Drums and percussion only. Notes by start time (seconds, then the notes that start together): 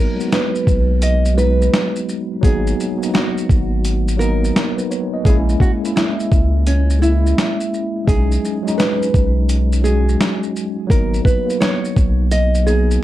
0.20 shaker
0.32 snare, closed hi-hat, shaker
0.55 shaker
0.67 kick, shaker
1.02 closed hi-hat, shaker
1.25 shaker
1.38 shaker
1.62 shaker
1.74 snare, closed hi-hat, shaker
1.96 shaker
2.09 shaker
2.43 kick, closed hi-hat, shaker
2.67 shaker
2.80 shaker
3.03 shaker
3.15 snare, closed hi-hat, shaker
3.38 shaker
3.49 kick, shaker
3.85 closed hi-hat, shaker
4.08 shaker
4.21 shaker
4.45 shaker
4.56 snare, closed hi-hat, shaker
4.79 shaker
4.91 shaker
5.25 kick, closed hi-hat, shaker
5.49 shaker
5.60 kick, shaker
5.85 shaker
5.97 snare, closed hi-hat, shaker
6.20 shaker
6.32 kick, shaker
6.67 closed hi-hat, shaker
6.90 shaker
7.03 shaker
7.27 shaker
7.38 snare, closed hi-hat, shaker
7.61 shaker
7.74 shaker
8.08 kick, closed hi-hat, shaker
8.32 shaker
8.45 shaker
8.68 shaker
8.80 snare, closed hi-hat, shaker
9.03 shaker
9.14 kick, shaker
9.49 closed hi-hat, shaker
9.73 shaker
9.85 shaker
10.09 shaker
10.21 snare, closed hi-hat, shaker
10.43 shaker
10.56 shaker
10.90 kick, closed hi-hat, shaker
11.14 shaker
11.25 kick, shaker
11.50 shaker
11.62 snare, closed hi-hat, shaker
11.85 shaker
11.96 kick, shaker
12.31 closed hi-hat, shaker
12.55 shaker
12.67 shaker
12.91 shaker